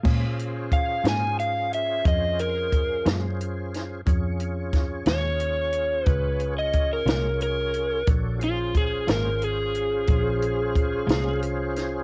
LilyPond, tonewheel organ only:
\new Staff \with { instrumentName = "Tonewheel organ" } { \time 12/8 \key bes \minor \tempo 4. = 60 <des' f' aes' c''>1. | <des' f' aes' des''>1. | <d' ges' a' des''>8 <des' f' aes' c''>1~ <des' f' aes' c''>4. | }